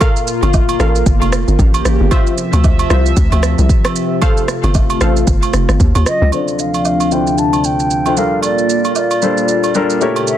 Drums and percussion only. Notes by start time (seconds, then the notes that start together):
0.01 kick, high agogo, shaker
0.16 shaker
0.27 shaker
0.43 high agogo, shaker
0.53 kick, low woodblock, shaker
0.69 high agogo, shaker
0.80 cross-stick, shaker
0.95 shaker
1.06 kick, shaker
1.22 high agogo, shaker
1.32 cross-stick, shaker
1.48 shaker
1.59 kick, shaker
1.74 high agogo, shaker
1.85 cross-stick, shaker
2.11 kick, high agogo, shaker
2.27 shaker
2.38 shaker
2.53 high agogo, shaker
2.64 kick, low woodblock, shaker
2.79 high agogo, shaker
2.90 cross-stick, shaker
3.06 shaker
3.17 kick, shaker
3.32 high agogo, shaker
3.43 cross-stick, shaker
3.59 shaker
3.69 kick, shaker
3.85 cross-stick, high agogo, shaker
3.96 shaker
4.22 kick, high agogo, shaker
4.37 shaker
4.48 cross-stick, shaker
4.64 high agogo, shaker
4.74 kick, low woodblock, shaker
4.90 high agogo, shaker
5.01 cross-stick, shaker
5.16 shaker
5.27 kick, shaker
5.43 high agogo, shaker
5.54 cross-stick, shaker
5.69 cross-stick, shaker
5.80 kick, shaker
5.95 high agogo, shaker
6.06 cross-stick, shaker
6.32 high agogo, shaker
6.48 shaker
6.59 shaker
6.74 high agogo, shaker
6.85 low woodblock, shaker
7.00 high agogo, shaker
7.11 shaker
7.27 shaker
7.38 shaker
7.53 high agogo, shaker
7.64 shaker
7.80 shaker
7.91 shaker
8.06 high agogo, shaker
8.17 shaker
8.43 high agogo, shaker
8.58 shaker
8.70 shaker
8.85 high agogo, shaker
8.96 low woodblock, shaker
9.11 high agogo, shaker
9.22 shaker
9.37 shaker
9.48 shaker
9.64 high agogo, shaker
9.74 shaker
9.90 shaker
10.01 shaker
10.16 high agogo, shaker
10.27 shaker